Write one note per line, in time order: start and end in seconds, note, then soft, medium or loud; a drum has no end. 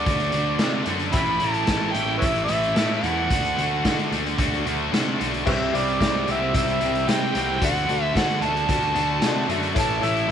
0.00 1.12 D4 medium
0.00 1.12 F#4 medium
0.00 1.12 A4 medium
0.00 0.83 D5 medium
0.00 1.12 D5 medium
0.05 0.30 D2 medium
0.05 0.32 D3 medium
0.05 0.33 A3 loud
0.05 0.33 D4 medium
0.05 0.34 F#4 loud
0.05 kick loud
0.05 closed hi-hat medium
0.20 closed hi-hat soft
0.32 0.57 D2 medium
0.32 0.59 D3 medium
0.32 0.60 A3 medium
0.32 0.60 D4 medium
0.32 0.61 F#4 medium
0.32 closed hi-hat medium
0.59 0.84 C3 medium
0.59 0.86 D3 medium
0.59 0.88 A3 medium
0.59 0.87 D4 loud
0.59 0.87 F#4 loud
0.59 snare loud
0.59 closed hi-hat medium
0.86 1.10 F#2 medium
0.86 1.12 D3 medium
0.86 1.16 A3 medium
0.86 1.13 D4 medium
0.86 1.13 F#4 medium
0.86 closed hi-hat medium
0.99 closed hi-hat soft
1.12 1.38 A1 medium
1.12 1.39 A2 medium
1.12 1.40 E3 medium
1.12 1.41 A3 medium
1.12 3.28 C#4 medium
1.12 1.41 C#4 loud
1.12 3.28 E4 medium
1.12 3.28 A4 medium
1.12 3.28 C#5 medium
1.12 1.21 E5 medium
1.12 1.20 G5 medium
1.12 1.41 B5 loud
1.12 kick loud
1.12 closed hi-hat loud
1.17 1.42 E4 loud
1.40 1.65 A1 medium
1.40 1.66 A2 medium
1.40 1.66 E3 medium
1.40 1.67 A3 medium
1.40 1.67 C#4 medium
1.40 1.68 E4 medium
1.40 1.93 A5 loud
1.40 closed hi-hat medium
1.54 closed hi-hat soft
1.67 1.92 A1 medium
1.67 1.92 A2 medium
1.67 1.93 E3 loud
1.67 1.94 A3 loud
1.67 1.94 C#4 loud
1.67 1.94 E4 loud
1.67 kick medium
1.67 snare loud
1.67 closed hi-hat medium
1.92 2.18 A1 medium
1.92 2.19 A2 medium
1.92 2.20 E3 medium
1.92 2.21 A3 medium
1.92 2.21 C#4 medium
1.92 2.22 E4 loud
1.92 2.18 G5 loud
1.92 closed hi-hat medium
2.18 2.46 A2 loud
2.18 2.47 E3 medium
2.18 2.47 A3 medium
2.18 2.48 C#4 loud
2.18 2.25 B4 medium
2.18 2.24 C#5 medium
2.18 2.44 E5 medium
2.18 closed hi-hat loud
2.22 2.46 A1 medium
2.22 2.48 E4 loud
2.22 kick loud
2.35 closed hi-hat soft
2.44 2.74 A2 medium
2.44 2.95 E5 medium
2.48 2.73 A1 medium
2.48 2.74 E3 medium
2.48 2.75 A3 medium
2.48 2.76 C#4 medium
2.48 2.76 E4 medium
2.48 closed hi-hat medium
2.63 closed hi-hat medium
2.75 3.00 A2 medium
2.75 3.01 E3 loud
2.75 3.01 A3 loud
2.75 3.02 C#4 loud
2.75 3.02 E4 loud
2.75 snare loud
2.75 closed hi-hat medium
2.96 4.03 F#5 medium
3.01 3.27 E2 medium
3.01 3.28 A2 medium
3.01 3.28 E3 medium
3.01 3.28 A3 medium
3.01 3.29 C#4 loud
3.01 3.28 E4 medium
3.01 closed hi-hat medium
3.28 3.54 D2 loud
3.28 3.55 D3 loud
3.28 3.55 A3 medium
3.28 3.56 D4 medium
3.28 5.44 D4 medium
3.28 3.57 F#4 loud
3.28 5.44 F#4 medium
3.28 5.44 A4 medium
3.28 5.44 D5 medium
3.28 kick loud
3.28 closed hi-hat loud
3.45 closed hi-hat soft
3.56 3.81 D2 medium
3.56 3.83 D3 medium
3.56 3.83 A3 loud
3.56 3.85 D4 medium
3.56 3.85 F#4 loud
3.56 closed hi-hat medium
3.84 4.09 D3 medium
3.84 4.08 D3 medium
3.84 4.10 A3 medium
3.84 4.11 D4 loud
3.84 4.12 F#4 loud
3.84 kick medium
3.84 snare loud
3.84 closed hi-hat medium
3.99 closed hi-hat soft
4.10 4.35 D2 medium
4.10 4.37 D3 medium
4.10 4.38 A3 medium
4.10 4.39 D4 medium
4.10 4.39 F#4 medium
4.10 closed hi-hat medium
4.26 closed hi-hat soft
4.38 4.62 D2 medium
4.38 4.65 D3 medium
4.38 4.66 A3 loud
4.38 4.65 D4 loud
4.38 4.67 F#4 loud
4.38 kick loud
4.38 closed hi-hat medium
4.54 closed hi-hat soft
4.66 4.89 D2 medium
4.66 4.90 D3 medium
4.66 4.91 A3 medium
4.66 4.91 D4 medium
4.66 4.92 F#4 loud
4.66 closed hi-hat medium
4.91 5.16 C3 medium
4.91 5.17 D3 loud
4.91 5.18 A3 loud
4.91 5.19 D4 medium
4.91 5.18 F#4 loud
4.91 snare loud
4.91 closed hi-hat medium
5.18 5.43 B1 medium
5.18 5.44 D3 medium
5.18 5.44 A3 medium
5.18 5.45 D4 medium
5.18 5.45 F#4 medium
5.18 closed hi-hat medium
5.34 closed hi-hat soft
5.44 5.70 C2 medium
5.44 5.70 C3 medium
5.44 5.71 E3 medium
5.44 5.71 G3 loud
5.44 5.72 C4 loud
5.44 7.59 E4 medium
5.44 5.67 G4 loud
5.44 5.72 G4 loud
5.44 7.59 G4 medium
5.44 5.53 B4 medium
5.44 5.67 C5 medium
5.44 7.59 C5 medium
5.44 5.54 C#5 medium
5.44 5.67 E5 loud
5.44 7.59 E5 medium
5.44 5.77 E5 medium
5.44 kick loud
5.44 crash loud
5.71 5.97 C2 medium
5.71 5.97 C3 medium
5.71 5.98 E3 medium
5.71 5.98 G3 medium
5.71 5.99 C4 medium
5.71 5.94 G4 loud
5.71 5.99 G4 medium
5.71 5.94 C5 medium
5.71 5.94 E5 loud
5.71 closed hi-hat medium
5.76 6.28 D5 medium
5.88 closed hi-hat soft
5.98 6.24 C2 medium
5.98 6.25 C3 medium
5.98 6.25 E3 medium
5.98 6.26 G3 loud
5.98 6.27 C4 loud
5.98 6.21 G4 medium
5.98 6.28 G4 loud
5.98 6.21 C5 medium
5.98 6.22 E5 medium
5.98 kick medium
5.98 snare loud
5.98 closed hi-hat medium
6.26 6.51 C2 medium
6.26 6.51 C3 medium
6.26 6.52 E3 medium
6.26 6.52 G3 medium
6.26 6.53 C4 loud
6.26 6.49 G4 medium
6.26 6.54 G4 loud
6.26 6.49 C5 medium
6.26 6.49 F#5 medium
6.26 closed hi-hat medium
6.31 6.54 E5 medium
6.53 6.78 C2 medium
6.53 6.79 C3 loud
6.53 6.79 E3 medium
6.53 6.79 G3 medium
6.53 6.80 C4 loud
6.53 6.75 G4 medium
6.53 6.81 G4 medium
6.53 6.75 C5 medium
6.53 6.76 E5 medium
6.53 7.10 E5 loud
6.53 kick loud
6.53 closed hi-hat loud
6.68 closed hi-hat soft
6.80 7.05 C2 medium
6.80 7.06 C3 medium
6.80 7.07 E3 medium
6.80 7.07 G3 medium
6.80 7.07 C4 medium
6.80 7.02 G4 medium
6.80 7.08 G4 medium
6.80 7.02 C5 medium
6.80 7.03 G5 medium
6.80 closed hi-hat medium
6.95 closed hi-hat soft
7.07 7.33 C3 medium
7.07 7.31 C3 medium
7.07 7.33 E3 loud
7.07 7.34 G3 loud
7.07 7.35 C4 loud
7.07 7.29 G4 loud
7.07 7.35 G4 loud
7.07 7.29 C5 medium
7.07 7.29 E5 loud
7.07 7.62 G5 loud
7.07 snare loud
7.07 closed hi-hat loud
7.34 7.58 C2 medium
7.34 7.59 C3 medium
7.34 7.60 E3 medium
7.34 7.60 G3 medium
7.34 7.60 C4 medium
7.34 7.60 G4 medium
7.34 7.57 G4 medium
7.34 7.57 C5 medium
7.34 7.57 F#5 medium
7.34 closed hi-hat medium
7.58 7.85 D3 medium
7.58 9.72 D4 medium
7.58 9.73 F#4 medium
7.58 7.82 F#4 loud
7.58 9.72 A4 medium
7.58 9.73 D5 medium
7.58 kick loud
7.58 closed hi-hat loud
7.62 7.85 D2 loud
7.62 7.87 A3 loud
7.62 7.87 D4 medium
7.62 7.87 F#4 medium
7.62 7.83 A4 medium
7.62 7.83 D5 loud
7.62 8.13 F#5 loud
7.76 closed hi-hat soft
7.86 8.12 D2 medium
7.86 8.13 D3 medium
7.86 8.15 A3 medium
7.86 8.15 D4 medium
7.86 8.14 F#4 medium
7.86 8.10 F#4 loud
7.86 8.10 A4 medium
7.86 8.10 D5 loud
7.86 closed hi-hat medium
8.14 8.40 D3 medium
8.14 8.39 D3 medium
8.14 8.42 A3 medium
8.14 8.42 D4 loud
8.14 8.36 F#4 medium
8.14 8.42 F#4 loud
8.14 8.37 A4 medium
8.14 8.37 C5 medium
8.14 8.44 F#5 loud
8.14 kick medium
8.14 snare loud
8.14 closed hi-hat medium
8.30 closed hi-hat soft
8.41 8.65 D2 medium
8.41 8.66 D3 medium
8.41 8.67 A3 medium
8.41 8.67 D4 medium
8.41 8.64 F#4 medium
8.41 8.67 F#4 medium
8.41 8.64 A4 medium
8.41 8.64 E5 medium
8.41 9.50 A5 loud
8.41 closed hi-hat medium
8.57 closed hi-hat soft
8.67 8.93 D2 medium
8.67 8.92 D3 medium
8.67 8.94 A3 medium
8.67 8.93 D4 loud
8.67 8.94 F#4 loud
8.67 8.91 F#4 medium
8.67 8.90 A4 medium
8.67 8.91 D5 medium
8.67 kick loud
8.67 closed hi-hat loud
8.82 closed hi-hat soft
8.93 9.19 D2 medium
8.93 9.20 D3 medium
8.93 9.22 A3 medium
8.93 9.22 D4 medium
8.93 9.21 F#4 loud
8.93 9.18 F#4 medium
8.93 closed hi-hat medium
8.98 9.18 A4 medium
8.98 9.18 D5 medium
9.21 9.45 C3 loud
9.21 9.46 D3 loud
9.21 9.48 A3 loud
9.21 9.47 D4 loud
9.21 9.48 F#4 loud
9.21 snare loud
9.21 closed hi-hat medium
9.25 9.45 F#4 loud
9.25 9.45 A4 medium
9.25 9.46 D5 loud
9.47 9.72 F#2 medium
9.47 9.73 D3 medium
9.47 9.75 A3 medium
9.47 9.74 D4 medium
9.47 9.71 F#4 medium
9.47 9.75 F#4 medium
9.47 9.71 A4 medium
9.47 9.71 E5 loud
9.47 closed hi-hat medium
9.63 closed hi-hat soft
9.74 10.00 A1 medium
9.74 10.00 A2 medium
9.74 10.01 E3 loud
9.74 10.02 A3 loud
9.74 10.02 C#4 loud
9.74 10.31 C#4 medium
9.74 9.96 E4 loud
9.74 10.02 E4 loud
9.74 10.31 E4 medium
9.74 9.97 A4 medium
9.74 10.31 A4 medium
9.74 9.97 C#5 loud
9.74 10.31 C#5 medium
9.74 kick loud
9.74 closed hi-hat loud
9.80 10.05 A5 loud
10.00 10.26 A1 loud
10.00 10.27 A2 medium
10.00 10.28 E3 medium
10.00 10.29 A3 medium
10.00 10.28 C#4 medium
10.00 10.23 E4 medium
10.00 10.29 E4 medium
10.00 10.23 A4 medium
10.00 10.23 C#5 loud
10.00 10.30 E5 loud
10.00 closed hi-hat medium
10.17 closed hi-hat soft
10.27 10.31 A2 loud
10.27 10.31 E3 medium
10.27 10.31 E4 medium
10.27 10.31 A4 medium